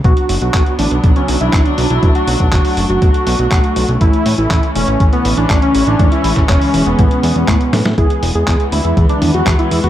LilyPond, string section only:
\new Staff \with { instrumentName = "String section" } { \clef bass \time 4/4 \key b \dorian \tempo 4 = 121 << { <fis d'>1~ | <fis d'>1 | <e cis'>1~ | <e cis'>1 |
<e b>1 | } \\ { b1 | a1~ | a1 | gis1 |
gis1 | } >> }